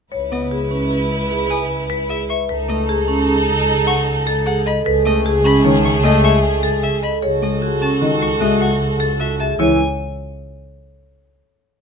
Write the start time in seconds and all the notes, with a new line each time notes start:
0.12 C#2 E4 B4 C#5
0.31 B3 D#5
0.51 G#4
0.71 C#4
0.91 G#4
1.30 G#4
1.50 G#5 D#6
1.90 B4
2.09 G#4 E5
2.29 B4 E5 C#6
2.49 C#2 D#4 A4 B4
2.69 A3 D#5
2.89 G#4
3.08 C#4
3.28 G#4
3.67 G#4
3.87 F#5 C#6
4.27 A4
4.46 G#4 F#5
4.66 A4 D#5 B5
4.85 C#2 A3 G#4 A4 B4
5.06 A3 D#5
5.25 G#4
5.45 C#4 B5
5.65 D#3 G#4 C#5
5.84 C#6
6.03 A3 G#4 D#5
6.24 E5 C#6
6.43 A4
6.63 A4
6.83 G#4 E5
7.03 A4 D#5 B5
7.22 C#2 F#4 G#4 A4 C#5
7.42 G#3 D#5
7.62 F#4 G#4
7.81 C#4 A5
8.01 D#3 F#4 D#5
8.22 C#6
8.41 G#3 F#4 D#5 E5
8.61 F#5 C#6
8.80 G#4
9.00 A4
9.20 F#4 E5
9.40 G#4 E5 A5
9.59 C#2 E3 E4 C#5 G#5